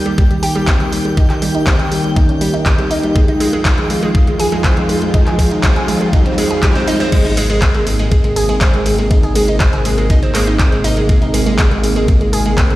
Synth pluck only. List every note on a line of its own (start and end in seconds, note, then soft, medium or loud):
0.06 0.14 G3 medium
0.18 0.27 G3 medium
0.31 0.36 G3 medium
0.43 0.48 G4 loud
0.55 0.64 G3 loud
0.68 0.76 C4 medium
0.80 0.85 G3 medium
0.92 1.01 G3 medium
1.05 1.13 G3 medium
1.17 1.26 D#4 loud
1.30 1.35 G4 medium
1.42 1.51 G3 loud
1.55 1.63 D#4 medium
1.67 1.76 C4 medium
1.79 1.88 G4 medium
1.92 2.00 G3 medium
2.04 2.13 G3 medium
2.16 2.25 D#4 loud
2.29 2.37 C#4 medium
2.41 2.50 G3 loud
2.54 2.62 D#4 medium
2.66 2.75 C4 medium
2.79 2.90 G3 medium
2.91 2.99 D#4 medium
3.03 3.12 G3 medium
3.16 3.24 G#3 loud
3.28 3.37 D#4 medium
3.40 3.49 G#3 loud
3.53 3.61 G#3 loud
3.78 3.83 G#3 medium
3.90 3.99 G#3 medium
4.03 4.11 G#3 loud
4.15 4.23 G#3 medium
4.27 4.32 G#3 medium
4.40 4.45 G#4 loud
4.52 4.61 G#3 loud
4.64 4.73 C4 medium
4.77 4.82 G#3 medium
4.89 4.98 G#3 medium
5.02 5.10 G#3 medium
5.14 5.23 D#4 loud
5.27 5.32 G#4 medium
5.39 5.47 G#3 loud
5.51 5.60 D#4 medium
5.63 5.72 C4 medium
5.76 5.84 G#4 medium
5.88 5.97 G#3 medium
6.01 6.09 G#3 medium
6.13 6.22 D#4 loud
6.26 6.34 C4 medium
6.38 6.50 G#3 loud
6.51 6.59 G#4 medium
6.63 6.71 G3 loud
6.75 6.80 C4 loud
6.88 6.96 D#4 loud
7.00 7.09 C4 loud
7.12 7.21 G#3 loud
7.25 7.33 D#4 medium
7.37 7.46 G#3 loud
7.50 7.58 G#3 loud
7.75 7.80 G#3 medium
7.87 7.95 G#3 medium
7.99 8.08 G#3 loud
8.11 8.20 G#3 medium
8.24 8.29 G#3 medium
8.36 8.42 G#4 loud
8.49 8.57 G#3 loud
8.61 8.70 C4 medium
8.74 8.79 G#3 medium
8.86 8.95 G#3 medium
8.99 9.07 G#3 medium
9.11 9.19 D#4 medium
9.23 9.28 G#4 medium
9.36 9.44 G#3 loud
9.48 9.57 D#4 medium
9.60 9.69 C4 medium
9.73 9.81 G#4 medium
9.85 9.94 G#3 medium
9.98 10.06 G#3 medium
10.10 10.19 D#4 loud
10.23 10.31 C4 medium
10.35 10.43 G#3 loud
10.47 10.56 D#4 medium
10.60 10.68 C4 medium
10.72 10.84 G#3 medium
10.84 10.93 D#4 loud
10.97 11.05 G#3 medium
11.09 11.18 G#3 loud
11.22 11.30 D#4 medium
11.34 11.42 G#3 loud
11.46 11.55 G#3 loud
11.59 11.70 G#3 medium
11.71 11.76 G#3 medium
11.83 11.92 G#3 medium
11.96 12.04 G#3 loud
12.08 12.17 G#3 medium
12.21 12.26 G#3 medium
12.33 12.38 G#4 loud
12.46 12.54 G#3 loud
12.58 12.66 C4 medium
12.70 12.75 G#3 medium